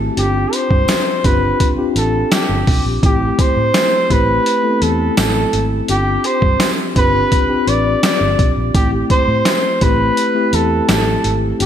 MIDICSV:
0, 0, Header, 1, 5, 480
1, 0, Start_track
1, 0, Key_signature, 0, "minor"
1, 0, Tempo, 714286
1, 116, Time_signature, 4, 2, 24, 8
1, 7834, End_track
2, 0, Start_track
2, 0, Title_t, "Flugelhorn"
2, 0, Program_c, 0, 56
2, 123, Note_on_c, 0, 67, 88
2, 362, Note_on_c, 0, 72, 100
2, 372, Note_off_c, 0, 67, 0
2, 843, Note_on_c, 0, 71, 93
2, 853, Note_off_c, 0, 72, 0
2, 1138, Note_off_c, 0, 71, 0
2, 1323, Note_on_c, 0, 69, 85
2, 1563, Note_on_c, 0, 67, 90
2, 1574, Note_off_c, 0, 69, 0
2, 1920, Note_off_c, 0, 67, 0
2, 2048, Note_on_c, 0, 67, 89
2, 2288, Note_on_c, 0, 72, 104
2, 2298, Note_off_c, 0, 67, 0
2, 2766, Note_on_c, 0, 71, 101
2, 2776, Note_off_c, 0, 72, 0
2, 3243, Note_on_c, 0, 69, 86
2, 3253, Note_off_c, 0, 71, 0
2, 3479, Note_off_c, 0, 69, 0
2, 3484, Note_on_c, 0, 69, 94
2, 3815, Note_off_c, 0, 69, 0
2, 3965, Note_on_c, 0, 67, 99
2, 4205, Note_on_c, 0, 72, 97
2, 4215, Note_off_c, 0, 67, 0
2, 4499, Note_off_c, 0, 72, 0
2, 4683, Note_on_c, 0, 71, 112
2, 5163, Note_on_c, 0, 74, 102
2, 5173, Note_off_c, 0, 71, 0
2, 5399, Note_off_c, 0, 74, 0
2, 5404, Note_on_c, 0, 74, 100
2, 5735, Note_off_c, 0, 74, 0
2, 5880, Note_on_c, 0, 67, 96
2, 5987, Note_off_c, 0, 67, 0
2, 6121, Note_on_c, 0, 72, 105
2, 6602, Note_on_c, 0, 71, 105
2, 6613, Note_off_c, 0, 72, 0
2, 7086, Note_on_c, 0, 69, 88
2, 7096, Note_off_c, 0, 71, 0
2, 7321, Note_off_c, 0, 69, 0
2, 7324, Note_on_c, 0, 69, 95
2, 7655, Note_off_c, 0, 69, 0
2, 7801, Note_on_c, 0, 67, 91
2, 7834, Note_off_c, 0, 67, 0
2, 7834, End_track
3, 0, Start_track
3, 0, Title_t, "Tine electric piano"
3, 0, Program_c, 1, 4
3, 0, Control_c, 1, 64, 127
3, 0, Note_on_c, 1, 57, 75
3, 0, Note_on_c, 1, 60, 70
3, 0, Note_on_c, 1, 64, 69
3, 0, Note_on_c, 1, 66, 65
3, 0, Note_on_c, 1, 67, 86
3, 113, Note_off_c, 1, 60, 0
3, 113, Note_on_c, 1, 60, 71
3, 117, Note_on_c, 1, 62, 63
3, 119, Note_on_c, 1, 65, 65
3, 121, Note_off_c, 1, 67, 0
3, 121, Note_on_c, 1, 67, 77
3, 124, Control_c, 1, 64, 0
3, 125, Note_off_c, 1, 57, 0
3, 128, Note_off_c, 1, 64, 0
3, 128, Note_off_c, 1, 66, 0
3, 252, Control_c, 1, 64, 127
3, 630, Note_off_c, 1, 60, 0
3, 632, Note_off_c, 1, 62, 0
3, 633, Note_off_c, 1, 65, 0
3, 635, Note_off_c, 1, 67, 0
3, 835, Note_on_c, 1, 60, 66
3, 836, Note_on_c, 1, 62, 66
3, 838, Note_on_c, 1, 65, 67
3, 841, Note_on_c, 1, 67, 76
3, 1093, Note_off_c, 1, 60, 0
3, 1094, Note_off_c, 1, 62, 0
3, 1095, Note_off_c, 1, 65, 0
3, 1096, Note_off_c, 1, 67, 0
3, 1190, Note_on_c, 1, 60, 72
3, 1194, Note_on_c, 1, 62, 65
3, 1195, Note_on_c, 1, 65, 69
3, 1200, Note_on_c, 1, 67, 81
3, 1795, Note_off_c, 1, 60, 0
3, 1797, Note_off_c, 1, 62, 0
3, 1797, Note_off_c, 1, 65, 0
3, 1800, Note_off_c, 1, 67, 0
3, 2031, Note_on_c, 1, 57, 73
3, 2036, Note_on_c, 1, 60, 64
3, 2037, Note_on_c, 1, 64, 67
3, 2041, Note_on_c, 1, 65, 62
3, 2043, Control_c, 1, 64, 0
3, 2082, Note_off_c, 1, 65, 0
3, 2085, Note_on_c, 1, 67, 79
3, 2178, Control_c, 1, 64, 127
3, 2549, Note_off_c, 1, 57, 0
3, 2552, Note_off_c, 1, 60, 0
3, 2552, Note_off_c, 1, 64, 0
3, 2576, Note_off_c, 1, 67, 0
3, 2753, Note_on_c, 1, 57, 66
3, 2756, Note_on_c, 1, 60, 60
3, 2758, Note_on_c, 1, 64, 67
3, 2761, Note_on_c, 1, 67, 75
3, 3012, Note_off_c, 1, 57, 0
3, 3014, Note_off_c, 1, 60, 0
3, 3015, Note_off_c, 1, 64, 0
3, 3016, Note_off_c, 1, 67, 0
3, 3111, Note_on_c, 1, 57, 75
3, 3114, Note_on_c, 1, 59, 53
3, 3116, Note_on_c, 1, 64, 67
3, 3119, Note_on_c, 1, 69, 79
3, 3158, Note_on_c, 1, 60, 71
3, 3159, Note_off_c, 1, 59, 0
3, 3715, Note_off_c, 1, 57, 0
3, 3718, Note_off_c, 1, 64, 0
3, 3719, Note_off_c, 1, 69, 0
3, 3739, Note_off_c, 1, 60, 0
3, 3957, Note_on_c, 1, 60, 69
3, 3958, Note_on_c, 1, 62, 68
3, 3962, Note_on_c, 1, 65, 66
3, 3964, Control_c, 1, 64, 0
3, 3964, Note_on_c, 1, 67, 81
3, 4070, Control_c, 1, 64, 127
3, 4472, Note_off_c, 1, 60, 0
3, 4473, Note_off_c, 1, 62, 0
3, 4475, Note_off_c, 1, 65, 0
3, 4476, Note_off_c, 1, 67, 0
3, 4675, Note_on_c, 1, 60, 68
3, 4677, Note_on_c, 1, 62, 66
3, 4678, Note_on_c, 1, 65, 63
3, 4681, Note_on_c, 1, 67, 75
3, 4933, Note_off_c, 1, 60, 0
3, 4934, Note_off_c, 1, 62, 0
3, 4935, Note_off_c, 1, 65, 0
3, 4936, Note_off_c, 1, 67, 0
3, 5031, Note_on_c, 1, 60, 75
3, 5035, Note_on_c, 1, 62, 67
3, 5037, Note_on_c, 1, 65, 68
3, 5039, Note_on_c, 1, 67, 79
3, 5635, Note_off_c, 1, 60, 0
3, 5637, Note_off_c, 1, 62, 0
3, 5638, Note_off_c, 1, 65, 0
3, 5639, Note_off_c, 1, 67, 0
3, 5871, Note_on_c, 1, 57, 73
3, 5874, Note_on_c, 1, 60, 65
3, 5875, Note_on_c, 1, 64, 67
3, 5880, Note_on_c, 1, 67, 80
3, 5883, Control_c, 1, 64, 0
3, 6007, Control_c, 1, 64, 127
3, 6389, Note_off_c, 1, 57, 0
3, 6391, Note_off_c, 1, 60, 0
3, 6391, Note_off_c, 1, 64, 0
3, 6394, Note_off_c, 1, 67, 0
3, 6595, Note_on_c, 1, 57, 72
3, 6597, Note_on_c, 1, 60, 67
3, 6600, Note_on_c, 1, 64, 66
3, 6603, Note_on_c, 1, 67, 76
3, 6853, Note_off_c, 1, 57, 0
3, 6854, Note_off_c, 1, 60, 0
3, 6856, Note_off_c, 1, 64, 0
3, 6857, Note_off_c, 1, 67, 0
3, 6952, Note_on_c, 1, 57, 73
3, 6956, Note_on_c, 1, 60, 65
3, 6959, Note_on_c, 1, 64, 71
3, 6961, Note_on_c, 1, 67, 77
3, 7556, Note_off_c, 1, 57, 0
3, 7558, Note_off_c, 1, 60, 0
3, 7559, Note_off_c, 1, 64, 0
3, 7560, Note_off_c, 1, 67, 0
3, 7788, Note_on_c, 1, 60, 71
3, 7791, Note_on_c, 1, 62, 67
3, 7794, Note_on_c, 1, 65, 67
3, 7798, Note_on_c, 1, 67, 83
3, 7805, Control_c, 1, 64, 0
3, 7834, Note_off_c, 1, 60, 0
3, 7834, Note_off_c, 1, 62, 0
3, 7834, Note_off_c, 1, 65, 0
3, 7834, Note_off_c, 1, 67, 0
3, 7834, End_track
4, 0, Start_track
4, 0, Title_t, "Fingered electric bass"
4, 0, Program_c, 2, 33
4, 116, Note_on_c, 2, 31, 100
4, 296, Note_off_c, 2, 31, 0
4, 474, Note_on_c, 2, 43, 95
4, 565, Note_off_c, 2, 43, 0
4, 837, Note_on_c, 2, 31, 86
4, 1016, Note_off_c, 2, 31, 0
4, 1314, Note_on_c, 2, 33, 89
4, 1495, Note_off_c, 2, 33, 0
4, 1674, Note_on_c, 2, 31, 74
4, 1764, Note_off_c, 2, 31, 0
4, 1797, Note_on_c, 2, 35, 79
4, 1886, Note_off_c, 2, 35, 0
4, 1913, Note_on_c, 2, 34, 83
4, 2004, Note_off_c, 2, 34, 0
4, 2035, Note_on_c, 2, 33, 98
4, 2215, Note_off_c, 2, 33, 0
4, 2396, Note_on_c, 2, 45, 87
4, 2486, Note_off_c, 2, 45, 0
4, 2758, Note_on_c, 2, 33, 86
4, 2937, Note_off_c, 2, 33, 0
4, 3237, Note_on_c, 2, 40, 98
4, 3417, Note_off_c, 2, 40, 0
4, 3479, Note_on_c, 2, 33, 80
4, 3658, Note_off_c, 2, 33, 0
4, 3718, Note_on_c, 2, 32, 86
4, 3897, Note_off_c, 2, 32, 0
4, 3958, Note_on_c, 2, 31, 101
4, 4137, Note_off_c, 2, 31, 0
4, 4315, Note_on_c, 2, 43, 93
4, 4405, Note_off_c, 2, 43, 0
4, 4677, Note_on_c, 2, 31, 86
4, 4857, Note_off_c, 2, 31, 0
4, 5156, Note_on_c, 2, 33, 89
4, 5336, Note_off_c, 2, 33, 0
4, 5516, Note_on_c, 2, 31, 80
4, 5606, Note_off_c, 2, 31, 0
4, 5637, Note_on_c, 2, 35, 82
4, 5726, Note_off_c, 2, 35, 0
4, 5757, Note_on_c, 2, 34, 81
4, 5846, Note_off_c, 2, 34, 0
4, 5877, Note_on_c, 2, 33, 96
4, 6056, Note_off_c, 2, 33, 0
4, 6235, Note_on_c, 2, 45, 94
4, 6325, Note_off_c, 2, 45, 0
4, 6596, Note_on_c, 2, 33, 94
4, 6776, Note_off_c, 2, 33, 0
4, 7076, Note_on_c, 2, 40, 88
4, 7256, Note_off_c, 2, 40, 0
4, 7317, Note_on_c, 2, 33, 87
4, 7497, Note_off_c, 2, 33, 0
4, 7557, Note_on_c, 2, 32, 86
4, 7736, Note_off_c, 2, 32, 0
4, 7796, Note_on_c, 2, 31, 94
4, 7834, Note_off_c, 2, 31, 0
4, 7834, End_track
5, 0, Start_track
5, 0, Title_t, "Drums"
5, 116, Note_on_c, 9, 42, 79
5, 183, Note_off_c, 9, 42, 0
5, 355, Note_on_c, 9, 42, 74
5, 422, Note_off_c, 9, 42, 0
5, 475, Note_on_c, 9, 36, 82
5, 542, Note_off_c, 9, 36, 0
5, 591, Note_on_c, 9, 54, 77
5, 596, Note_on_c, 9, 38, 108
5, 598, Note_on_c, 9, 42, 93
5, 658, Note_off_c, 9, 54, 0
5, 663, Note_off_c, 9, 38, 0
5, 665, Note_off_c, 9, 42, 0
5, 836, Note_on_c, 9, 36, 90
5, 836, Note_on_c, 9, 42, 87
5, 903, Note_off_c, 9, 36, 0
5, 903, Note_off_c, 9, 42, 0
5, 1076, Note_on_c, 9, 42, 95
5, 1077, Note_on_c, 9, 36, 79
5, 1143, Note_off_c, 9, 42, 0
5, 1144, Note_off_c, 9, 36, 0
5, 1317, Note_on_c, 9, 42, 72
5, 1384, Note_off_c, 9, 42, 0
5, 1556, Note_on_c, 9, 42, 90
5, 1557, Note_on_c, 9, 38, 108
5, 1557, Note_on_c, 9, 54, 94
5, 1623, Note_off_c, 9, 42, 0
5, 1624, Note_off_c, 9, 38, 0
5, 1624, Note_off_c, 9, 54, 0
5, 1797, Note_on_c, 9, 36, 84
5, 1797, Note_on_c, 9, 46, 64
5, 1864, Note_off_c, 9, 36, 0
5, 1864, Note_off_c, 9, 46, 0
5, 2036, Note_on_c, 9, 36, 109
5, 2037, Note_on_c, 9, 42, 78
5, 2103, Note_off_c, 9, 36, 0
5, 2105, Note_off_c, 9, 42, 0
5, 2276, Note_on_c, 9, 36, 88
5, 2276, Note_on_c, 9, 42, 75
5, 2343, Note_off_c, 9, 36, 0
5, 2343, Note_off_c, 9, 42, 0
5, 2513, Note_on_c, 9, 54, 79
5, 2515, Note_on_c, 9, 38, 104
5, 2517, Note_on_c, 9, 42, 96
5, 2581, Note_off_c, 9, 54, 0
5, 2582, Note_off_c, 9, 38, 0
5, 2585, Note_off_c, 9, 42, 0
5, 2758, Note_on_c, 9, 36, 85
5, 2759, Note_on_c, 9, 42, 78
5, 2825, Note_off_c, 9, 36, 0
5, 2826, Note_off_c, 9, 42, 0
5, 2998, Note_on_c, 9, 42, 90
5, 3066, Note_off_c, 9, 42, 0
5, 3237, Note_on_c, 9, 42, 70
5, 3304, Note_off_c, 9, 42, 0
5, 3476, Note_on_c, 9, 42, 91
5, 3476, Note_on_c, 9, 54, 96
5, 3478, Note_on_c, 9, 38, 108
5, 3543, Note_off_c, 9, 54, 0
5, 3544, Note_off_c, 9, 42, 0
5, 3545, Note_off_c, 9, 38, 0
5, 3717, Note_on_c, 9, 42, 65
5, 3784, Note_off_c, 9, 42, 0
5, 3954, Note_on_c, 9, 42, 80
5, 4022, Note_off_c, 9, 42, 0
5, 4194, Note_on_c, 9, 42, 78
5, 4262, Note_off_c, 9, 42, 0
5, 4315, Note_on_c, 9, 36, 79
5, 4382, Note_off_c, 9, 36, 0
5, 4434, Note_on_c, 9, 38, 104
5, 4435, Note_on_c, 9, 54, 84
5, 4436, Note_on_c, 9, 42, 90
5, 4501, Note_off_c, 9, 38, 0
5, 4502, Note_off_c, 9, 54, 0
5, 4503, Note_off_c, 9, 42, 0
5, 4677, Note_on_c, 9, 36, 93
5, 4677, Note_on_c, 9, 42, 84
5, 4744, Note_off_c, 9, 36, 0
5, 4744, Note_off_c, 9, 42, 0
5, 4918, Note_on_c, 9, 36, 77
5, 4918, Note_on_c, 9, 42, 88
5, 4985, Note_off_c, 9, 36, 0
5, 4985, Note_off_c, 9, 42, 0
5, 5158, Note_on_c, 9, 42, 72
5, 5225, Note_off_c, 9, 42, 0
5, 5397, Note_on_c, 9, 42, 95
5, 5397, Note_on_c, 9, 54, 91
5, 5398, Note_on_c, 9, 38, 116
5, 5464, Note_off_c, 9, 42, 0
5, 5464, Note_off_c, 9, 54, 0
5, 5465, Note_off_c, 9, 38, 0
5, 5638, Note_on_c, 9, 36, 85
5, 5638, Note_on_c, 9, 42, 68
5, 5705, Note_off_c, 9, 36, 0
5, 5705, Note_off_c, 9, 42, 0
5, 5877, Note_on_c, 9, 36, 114
5, 5877, Note_on_c, 9, 42, 79
5, 5944, Note_off_c, 9, 36, 0
5, 5944, Note_off_c, 9, 42, 0
5, 6115, Note_on_c, 9, 36, 86
5, 6115, Note_on_c, 9, 42, 74
5, 6182, Note_off_c, 9, 42, 0
5, 6183, Note_off_c, 9, 36, 0
5, 6353, Note_on_c, 9, 38, 106
5, 6355, Note_on_c, 9, 42, 98
5, 6356, Note_on_c, 9, 54, 83
5, 6420, Note_off_c, 9, 38, 0
5, 6422, Note_off_c, 9, 42, 0
5, 6423, Note_off_c, 9, 54, 0
5, 6594, Note_on_c, 9, 42, 81
5, 6596, Note_on_c, 9, 36, 89
5, 6661, Note_off_c, 9, 42, 0
5, 6663, Note_off_c, 9, 36, 0
5, 6836, Note_on_c, 9, 42, 94
5, 6903, Note_off_c, 9, 42, 0
5, 7076, Note_on_c, 9, 42, 72
5, 7143, Note_off_c, 9, 42, 0
5, 7315, Note_on_c, 9, 42, 91
5, 7317, Note_on_c, 9, 38, 116
5, 7317, Note_on_c, 9, 54, 90
5, 7383, Note_off_c, 9, 42, 0
5, 7384, Note_off_c, 9, 38, 0
5, 7384, Note_off_c, 9, 54, 0
5, 7555, Note_on_c, 9, 42, 68
5, 7622, Note_off_c, 9, 42, 0
5, 7796, Note_on_c, 9, 42, 80
5, 7834, Note_off_c, 9, 42, 0
5, 7834, End_track
0, 0, End_of_file